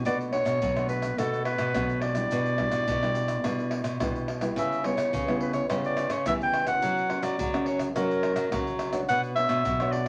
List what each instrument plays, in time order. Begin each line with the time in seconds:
0.05 nylon-string guitar B2 A3 D4 F#4, clarinet D5, pandeiro, maracas, surdo
0.20 pandeiro, maracas
0.33 nylon-string guitar A3 D4 F#4, clarinet C#5, pandeiro, tamborim
0.45 nylon-string guitar B2, pandeiro, tamborim, maracas
0.62 nylon-string guitar B2 F#3, pandeiro, maracas, surdo
0.77 nylon-string guitar A3 D4 F#4, pandeiro, tamborim, maracas
0.89 clarinet B4, pandeiro, maracas
1.02 pandeiro, tamborim, maracas
1.18 nylon-string guitar B2 A3 D4 F#4, clarinet A4, pandeiro, tamborim, maracas, surdo
1.33 pandeiro, maracas
1.45 clarinet B4, pandeiro, tamborim
1.58 nylon-string guitar B2, pandeiro, tamborim, maracas
1.75 nylon-string guitar B2 F#3 A3 D4 F#4, pandeiro, tamborim, maracas, surdo
1.89 pandeiro, maracas
2.01 clarinet D5, pandeiro, tamborim
2.15 nylon-string guitar G3 D4 E4, pandeiro, tamborim, maracas
2.31 nylon-string guitar B2, pandeiro, maracas, surdo
2.46 pandeiro, maracas
2.58 nylon-string guitar G3 D4 E4, pandeiro, tamborim, surdo
2.71 nylon-string guitar B2, pandeiro, tamborim, maracas
2.88 nylon-string guitar B2, pandeiro, maracas, surdo
3.02 nylon-string guitar G3 D4 E4, pandeiro, tamborim, maracas
3.15 pandeiro, maracas
3.28 pandeiro, tamborim, maracas
3.44 nylon-string guitar B2 G3 D4 E4, pandeiro, tamborim, maracas, surdo
3.59 pandeiro, maracas
3.71 pandeiro, tamborim
3.84 nylon-string guitar B2, pandeiro, tamborim, maracas
4.00 nylon-string guitar B2 G3 D4 E4, pandeiro, tamborim, maracas, surdo
4.15 pandeiro, maracas
4.28 pandeiro, tamborim
4.41 nylon-string guitar G3 B3 E4, pandeiro, tamborim, maracas
4.56 nylon-string guitar C#3, clarinet E5, pandeiro, maracas, surdo
4.72 pandeiro, maracas
4.84 nylon-string guitar G3 B3 E4, clarinet C#5, pandeiro, tamborim
4.97 nylon-string guitar C#3, pandeiro, tamborim, maracas
5.13 nylon-string guitar C#3, pandeiro, maracas, surdo
5.28 nylon-string guitar G3 B3 E4, pandeiro, tamborim, maracas
5.41 clarinet B4, pandeiro
5.53 clarinet C#5, pandeiro, tamborim, maracas
5.69 nylon-string guitar C#3 G3 B3 E4, pandeiro, tamborim, maracas, surdo
5.84 clarinet D5, pandeiro, maracas
5.97 pandeiro, tamborim, maracas
6.10 nylon-string guitar C#3, clarinet C#5, pandeiro, tamborim, maracas
6.26 nylon-string guitar C#3 E3 G3 B3 E4, clarinet E5, pandeiro, tamborim, maracas, surdo
6.41 clarinet G5, pandeiro, maracas
6.54 pandeiro, tamborim
6.67 nylon-string guitar C#4 F#4 A#4, clarinet F#5, pandeiro, tamborim, maracas
6.82 nylon-string guitar F#3, pandeiro, maracas, surdo
6.98 pandeiro, maracas
7.10 nylon-string guitar C#4 F#4 A#4, pandeiro, tamborim
7.22 nylon-string guitar F#3, clarinet D5, pandeiro, tamborim, maracas
7.39 nylon-string guitar C#3 F#3, pandeiro, maracas, surdo
7.54 nylon-string guitar C#4 F#4 A#4, pandeiro, tamborim, maracas
7.66 clarinet C#5, pandeiro
7.79 pandeiro, tamborim, maracas
7.96 nylon-string guitar F#3 C#4 F#4 A#4, clarinet A#4, pandeiro, tamborim, maracas, surdo
8.11 pandeiro, maracas
8.23 pandeiro, tamborim
8.36 nylon-string guitar F#3, pandeiro, tamborim, maracas
8.52 nylon-string guitar C#3 F#3 C#4 F#4 A#4, pandeiro, tamborim, maracas, surdo
8.67 pandeiro, maracas
8.79 pandeiro, tamborim, maracas
8.93 nylon-string guitar D4 F#4 C#5, pandeiro, tamborim, maracas
9.08 nylon-string guitar B2 B3, clarinet F#5, pandeiro, maracas, surdo
9.23 pandeiro, maracas
9.35 nylon-string guitar D4 F#4 C#5, clarinet E5, pandeiro, tamborim
9.49 nylon-string guitar B2, pandeiro, tamborim, maracas
9.65 nylon-string guitar B2 F#3, pandeiro, maracas, surdo
9.80 nylon-string guitar D4 F#4 C#5, pandeiro, tamborim, maracas
9.92 clarinet D5, pandeiro